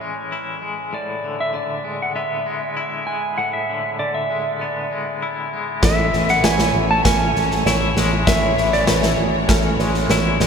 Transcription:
Already playing: E3 C#4 E4 C#5
0.01 G#3
0.32 E4
0.62 G#3
0.93 A2 D5
1.24 D3
1.40 E5
1.54 D3 D5
1.84 G#3
2.02 F#5
2.16 B3 E5
2.46 G#3
2.77 E4
3.07 G#3 G#5
3.38 A2 F#5
3.53 E5
3.69 D3
3.99 D3 D5
4.14 E5
4.30 G#3
4.60 B3 D5
4.92 G#3
5.22 E4
5.53 G#3
5.82 A1 A2 E4 A4 C#5 E5 G#5, kick, snare
6.13 A1 E3, snare
6.28 F#5, snare
6.44 A1 E3 C#5 G#5, snare
6.59 snare
6.75 A1
6.91 A5
7.05 A1 C#4 G#5, kick, snare
7.35 A1 A4, snare
7.51 snare
7.66 A1 E4 C#5, snare
7.97 A1 G#3, snare
8.27 A1 A2 F#4 C#5 E5, kick, snare
8.58 A1 E3, snare
8.73 D5, snare
8.87 A1 E3 B4 C#5, snare
9.03 snare
9.19 A1
9.49 A1 C#4 A4, kick, snare
9.79 A1 G#3 C#5, snare
9.94 snare
10.09 A1 E4 C#5, snare
10.40 A1 G#3 C#5, snare

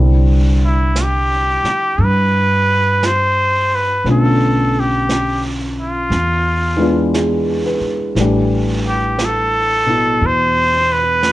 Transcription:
Already playing: C2 D3 G3 C4 D4 E4 G4
0.65 E4
0.96 brush sweep, snare, hi-hat pedal
1.03 G4
1.64 muted upright bass stroke, snare
1.98 G2, brush sweep
2.04 B4
3.03 C5, brush sweep, snare, hi-hat pedal
3.75 B4
4.04 B1 D3 A3 B3 C#4, brush sweep, snare
4.08 F4 A4
4.80 G4
5.09 brush sweep, snare, hi-hat pedal
5.80 F4
6.10 E2, brush sweep, snare
6.77 E3 G#3 B3
6.81 D4 F4
7.14 G#4, brush sweep, snare, hi-hat pedal
7.66 B4
7.80 muted upright bass stroke
8.15 A1 E3 G3 A3, brush sweep, snare
8.20 D4 G4
8.88 G4
9.19 brush sweep, snare, hi-hat pedal
9.25 A4
9.87 B2 E4
10.20 E2, brush sweep
10.27 C5
10.92 B4
11.23 brush sweep, snare, hi-hat pedal

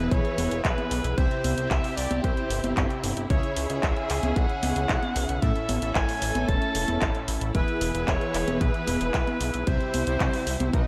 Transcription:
Already playing: E3 B3 E4 G#4 B4 E5
0.11 B1 C#5, kick, closed hi-hat
0.25 closed hi-hat
0.38 E1, open hi-hat, high conga
0.51 E1, closed hi-hat
0.64 B1 B4, kick, clap, closed hi-hat
0.78 closed hi-hat, high conga
0.91 B1, open hi-hat
1.04 B1, closed hi-hat
1.17 C2 C3 C4 E4 G4 C5 E5, kick, closed hi-hat
1.31 closed hi-hat
1.44 C2, open hi-hat, high conga
1.58 C2 C3 C4 E4 G4 E5, closed hi-hat
1.70 C2 E5, kick, clap, closed hi-hat
1.84 open hi-hat
1.97 C2 D5, open hi-hat
2.11 C2, closed hi-hat, high conga
2.24 C2 C5, kick, closed hi-hat
2.37 closed hi-hat
2.50 G1, open hi-hat
2.64 G1, closed hi-hat, high conga
2.77 G1, kick, clap, closed hi-hat
2.90 closed hi-hat
3.04 G1, open hi-hat
3.17 G1, closed hi-hat
3.30 C#2 C#3 C#4 E4 G#4 C#5 E5, kick, closed hi-hat
3.43 closed hi-hat
3.56 C#2, open hi-hat
3.70 C#2 C#3 C#4 E4 G#4 E5, closed hi-hat
3.83 C#2 E5, kick, clap, closed hi-hat
3.96 closed hi-hat
4.10 C#2, clap, open hi-hat
4.23 C#2, closed hi-hat, high conga
4.36 B1 F#5, kick, closed hi-hat
4.49 closed hi-hat
4.63 C#2, open hi-hat, high conga
4.76 C#2, closed hi-hat
4.89 B1, kick, clap, closed hi-hat
5.03 closed hi-hat, high conga
5.16 B1, open hi-hat
5.29 B1, closed hi-hat
5.42 A2 C#4 E4 A4 E5, kick, closed hi-hat
5.56 closed hi-hat
5.69 A1, open hi-hat, high conga
5.82 A1 A2 C#4 E4 A4 E5, closed hi-hat
5.95 A1 G#5, kick, clap, closed hi-hat
6.09 open hi-hat
6.22 A1, open hi-hat
6.35 A1, closed hi-hat, high conga
6.49 E1 A5, kick, closed hi-hat
6.62 closed hi-hat
6.75 E1, open hi-hat
6.88 E1, closed hi-hat, high conga
7.01 A1, kick, clap, closed hi-hat
7.15 closed hi-hat
7.28 A1, open hi-hat
7.41 A1, closed hi-hat
7.55 E1 E3 B3 E4 G#4 B4 E5, kick, closed hi-hat
7.68 closed hi-hat
7.81 E1, open hi-hat
7.95 E1 E3 B3 E4 G#4 E5, closed hi-hat
8.08 E1 C#5, kick, clap, closed hi-hat
8.21 closed hi-hat
8.34 E1, clap, open hi-hat
8.48 E1, closed hi-hat, high conga
8.61 B1 B4, kick, closed hi-hat
8.74 closed hi-hat
8.88 E1, open hi-hat, high conga
9.01 E1, closed hi-hat
9.14 B1, kick, clap, closed hi-hat
9.27 closed hi-hat, high conga
9.41 B1, open hi-hat
9.54 B1, closed hi-hat
9.67 C2 C3 G3 C4 E4 G4 C5 E5, kick, closed hi-hat
9.80 closed hi-hat
9.94 C2, open hi-hat, high conga
10.07 C2 C3 C4 E4 G4 E5, closed hi-hat
10.20 C2, kick, clap, closed hi-hat
10.33 open hi-hat
10.47 C2, open hi-hat
10.60 C2, closed hi-hat, high conga
10.73 B1 B2 F#3 B3 D#4 F#4 B4 D#5, kick, closed hi-hat

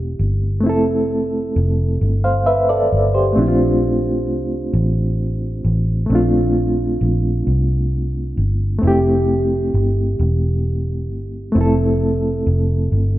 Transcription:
Already playing: E1 A3 C4 E4 G4
0.19 G1
0.60 A3 C4
0.65 F1 E4
0.69 A4
1.56 F1
2.01 G1
2.24 C5 F5
2.46 B4 E5
2.69 A4 D5
2.92 G1
3.14 G4 C5
3.33 A3 C4
3.37 A#1 D4
3.42 E4
3.48 F4
4.28 C2
4.73 A1
5.65 A1
6.06 A#1 A3 C4
6.12 D4 F4
7.01 A#1
7.47 C2
8.37 G1
8.79 A3 C4
8.83 F1 E4
8.87 G4
9.74 G1
10.19 E1
11.10 G1
11.52 F1 A3 C4
11.58 E4 A4
12.47 F1
12.92 G1

